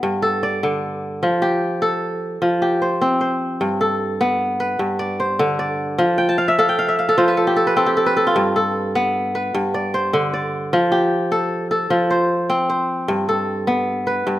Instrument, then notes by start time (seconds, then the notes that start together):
kora
Already playing: B3 A4
0.03 G2
0.22 A4
0.43 D5
0.63 D3
1.23 F3
1.42 G4
1.82 A4
2.42 F3
2.62 G4
2.82 C5
3.01 C4
3.21 C5
3.61 G2
3.81 A4
4.21 B3
4.60 B4
4.79 G2
4.99 D5
5.20 C5
5.39 D3
5.59 D5
5.98 F3
6.18 G5
6.29 A5
6.38 F5
6.48 E5
6.59 A4 F5
6.69 G5
6.79 F5
6.88 E5
6.99 F5
7.09 A4
7.18 F3 C5
7.28 B4
7.37 A4
7.47 G4
7.56 A4
7.67 B4
7.77 C4 A4
7.86 G4
7.97 A4
8.06 B4
8.17 A4
8.27 F4
8.36 G2
8.56 A4
8.95 B3
9.35 B4
9.55 G2
9.74 D5
9.94 C5
10.13 D3
10.34 D5
10.73 F3
10.92 G4
11.32 A4
11.71 A4
11.90 F3
12.11 C5
12.50 C4
12.70 C5
13.08 G2
13.29 A4
13.67 B3
14.07 B4
14.27 G2